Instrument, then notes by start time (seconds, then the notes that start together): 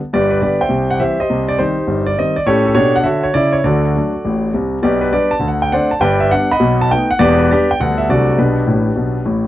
grand piano
0.13 G1 G2 G4 B4 D5
0.30 B4
0.42 D3 G3 B3 G4 B4 D5
0.61 C5 E5 G5
0.69 C2 C3
0.91 F#5
1.00 E3 G3 C4 G4 C5 E5
1.20 G4 C5 D#5
1.30 C2 C3
1.49 D5
1.58 D#3 G3 C4 D#4 G4 C5
1.87 G1 G2
2.06 D5
2.18 D#3 G3 C4 D#5
2.36 D5
2.46 A2 C#4 G4 A4 C#5
2.66 A4
2.75 B2 D4 G4 A4 C#5
2.96 F#5
3.04 D3 F#4 A4 C#5 E5
3.23 C#5
3.34 C#3 E4 D5
3.53 C#5
3.64 D2 D3 F#4 A4 D5
3.96 F#3 A3 D4
4.25 A1 A2
4.54 C2 C3
4.82 B1 B2 G4 B4 D5
5.01 B4
5.12 G3 B3 D4 G4 B4 D5
5.31 A5
5.39 D2 D3
5.48 F#5
5.62 G5
5.72 A3 C4 D4 C5 D5 F#5
5.91 A5
6.00 G1 G2 B4 D5 G5
6.20 E5
6.31 G3 B3 D4 F#5
6.52 D#5 F#5 B5
6.60 B1 B2
6.81 A5
6.90 A3 B3 D#4 G5
7.11 F#5
7.19 E1 E2 G4 B4 D5
7.39 B4
7.50 G3 B3 D4 G4 B4 D5
7.71 G5
7.79 D2 D3 G3 B3 D4 F#5
7.98 E5
8.09 C2 C3 F#3 A3 D4 F#4 A4 D5
8.37 B1 B2 D4 G4 B4
8.67 A1 A2
8.96 B1 B2
9.26 A1 A2